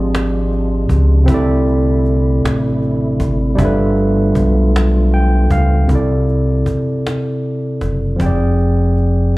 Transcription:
Already playing: G#1 F3 G#3 C4 D4 F4 G4 G#4 D5
0.15 cajon slap
0.52 cajon slap
0.89 C#2, cajon bass, cajon slap
1.23 C3 C4 E4
1.27 C2 D3 A3 E4, cajon bass
1.32 A4 D5
1.67 cajon slap
2.05 cajon slap
2.44 A1, cajon slap
2.82 cajon slap
3.20 G#1, cajon bass, cajon slap
3.55 F3 G3 B3 D4 F4 E5, cajon bass
3.59 G1 F4 A4
3.65 B4
3.97 cajon slap
4.35 B1, cajon bass
4.76 cajon slap
5.13 G5, cajon slap
5.50 C#2 F5, cajon bass, cajon slap
5.85 C3 C4, cajon bass
5.90 C2 E4 A4
5.95 D5
6.29 cajon slap
6.66 muted fingered electric bass stroke, cajon bass
7.07 cajon slap
7.43 cajon slap
7.81 F#1, cajon bass, cajon slap
8.16 F3 C4, cajon bass
8.21 F1 G#4 G5
8.26 D5
8.59 cajon slap
8.97 cajon slap

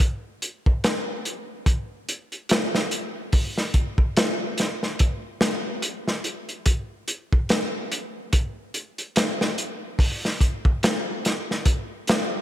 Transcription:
0.00 kick
0.42 closed hi-hat
0.66 kick
0.84 snare, closed hi-hat
1.25 closed hi-hat
1.66 kick, closed hi-hat
2.09 closed hi-hat
2.32 closed hi-hat
2.49 snare, closed hi-hat
2.75 snare
2.91 closed hi-hat
3.32 kick, open hi-hat
3.58 snare
3.74 kick, closed hi-hat
3.98 kick
4.17 snare, closed hi-hat
4.58 snare, closed hi-hat
4.83 snare
4.99 kick, closed hi-hat
5.41 snare, closed hi-hat
5.82 closed hi-hat
6.08 snare
6.24 closed hi-hat
6.49 closed hi-hat
6.66 kick, closed hi-hat
7.08 closed hi-hat
7.33 kick
7.49 snare, closed hi-hat
7.92 closed hi-hat
8.33 kick, closed hi-hat
8.74 closed hi-hat
8.98 closed hi-hat
9.16 snare, closed hi-hat
9.41 snare
9.58 closed hi-hat
9.99 kick, open hi-hat
10.25 snare
10.41 kick, closed hi-hat
10.65 kick
10.83 snare, closed hi-hat
11.25 snare, closed hi-hat
11.51 snare
11.65 kick, closed hi-hat
12.07 snare, closed hi-hat

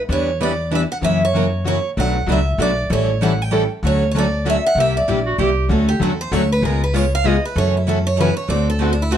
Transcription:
0.09 E2 E3 G3 B3 D4 E4 G4 B4 C#5
0.41 E3 G3 B3 D4 E4 G4 B4 D5
0.71 E3 G3 B3 D4 E4 G4 B4
0.75 E5
0.92 F#5
1.01 F#2 C#3 E3 F#3 A#3 C#4 E4 F#4 A#4 E5
1.25 C#5
1.34 C#3 E3 F#3 A#3 C#4 E4 F#4 A#4
1.65 C#3 E3 F#3 A#3 C#4 E4 F#4 A#4 C#5
1.97 B1 B2 F#3 A3 D4 F#4 B4 F#5
2.27 C#2 B2 F#3 A3 D4 F#4 B4
2.32 E5
2.58 B1 B2 F#3 A3 D4 F#4 B4 D5
2.90 A1 E3 G3 C#4 E4 A4 C#5
3.22 E3 G3 C#4 E4 A4 F#5
3.42 G5
3.52 E3 G3 C#4 E4 A4
3.83 D2 D3 F#3 A3 C#4 F#4 A4
3.87 C#5
4.11 D3 F#3 A3 F#4 C#5
4.16 C#4 A4 D5
4.45 D3 F#3 A3 C#4 F#4 A4
4.50 E5
4.66 F#5
4.75 C2 C3 G3 A#3 E4 G4
4.80 E5
4.97 D5
5.08 A#1 C3 G3 A#3 E4 G4
5.26 F#4
5.38 C2 C3 G3 A#3 E4 G4
5.68 D2 D3 F#3 A3 C#4 F#4 A4
5.89 G4
6.00 E2 D3 F#3 A3 C#4 F#4 A4
6.21 C5
6.31 D2 D3 F#3 A3 C#4 F#4 A4 C#5
6.52 B4
6.62 C#2 C#3 G#3 B3 F4 G#4 A#4
6.84 B4
6.93 C#3 G#3 B3 F4 G#4 C#5
7.15 F5
7.26 C#3 G#3 B3 F4 G#4 D#5
7.45 B4
7.55 F#2 C#3 E3 F#3 A3 C#4 E4 F#4 A4 C#5
7.77 E4
7.87 C#3 E3 F#3 A3 C#4 E4 F#4 A4
8.07 C#5
8.16 C#3 E3 F#3 C#4 E4 A4
8.21 A3 C#4 F#4 B4
8.37 C#5
8.49 D2 D3 A3 C4 F#4 A4 D5
8.70 A4
8.81 D3 A3 C4 F#4 A4
8.93 D4
9.02 E4
9.11 D3 A3 C4 F#4 A4

